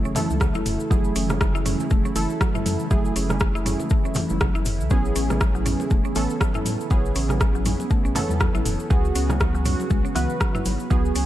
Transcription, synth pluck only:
0.05 0.15 C#4 medium
0.16 0.29 E3 loud
0.41 0.54 F#3 loud
0.55 0.61 E4 loud
0.91 0.99 F#3 loud
1.16 1.23 C#4 medium
1.41 1.54 E3 medium
1.55 1.61 E4 loud
1.66 1.79 C#4 medium
1.91 2.04 A3 medium
2.05 2.15 C#4 medium
2.16 2.29 E3 loud
2.41 2.54 F#3 loud
2.55 2.61 E4 loud
2.91 2.99 F#3 loud
3.16 3.24 C#4 medium
3.41 3.54 E3 medium
3.55 3.61 E4 loud
3.66 3.79 C#4 medium
3.91 4.04 A3 medium
4.05 4.15 C#4 medium
4.16 4.30 E3 loud
4.41 4.54 F#3 loud
4.55 4.61 E4 loud
4.91 4.99 F#3 loud
5.16 5.23 C#4 medium
5.41 5.54 E3 medium
5.55 5.61 F#3 medium
5.66 5.79 C#4 medium
5.91 6.04 A3 medium
6.05 6.15 C#4 medium
6.16 6.29 E3 loud
6.41 6.54 F#3 loud
6.55 6.61 E4 loud
6.91 6.98 F#3 loud
7.16 7.23 C#4 medium
7.41 7.54 E3 medium
7.55 7.61 F#3 medium
7.66 7.79 C#4 medium
7.91 8.04 A3 medium
8.05 8.15 C#4 medium
8.15 8.29 E3 loud
8.41 8.54 F#3 loud
8.55 8.61 E4 loud
8.90 8.98 F#3 loud
9.15 9.23 C#4 medium
9.40 9.53 E3 medium
9.55 9.61 F#3 medium
9.65 9.78 C#4 medium
9.90 10.03 G#3 medium
10.05 10.14 C#4 medium
10.15 10.29 E3 loud
10.40 10.53 F#3 loud
10.55 10.61 E4 loud
10.90 10.98 F#3 loud
11.16 11.23 C#4 medium

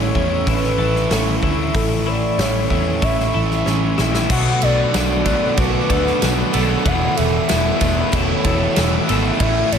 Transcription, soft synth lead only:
0.00 0.15 C#5 loud
0.16 0.49 C#5 medium
0.48 1.12 B4 loud
1.10 1.58 A4 medium
1.75 2.09 A4 loud
2.07 2.40 D5 loud
2.38 3.05 C#5 loud
3.03 3.67 E5 loud
4.31 4.60 F#5 loud
4.63 5.22 D5 loud
5.26 5.59 D5 medium
5.58 6.53 B4 loud
6.87 7.18 F#5 loud
7.17 7.81 E5 loud
7.81 8.16 E5 loud
8.15 9.09 C#5 medium
9.40 9.73 E5 medium
9.72 9.78 C#5 loud

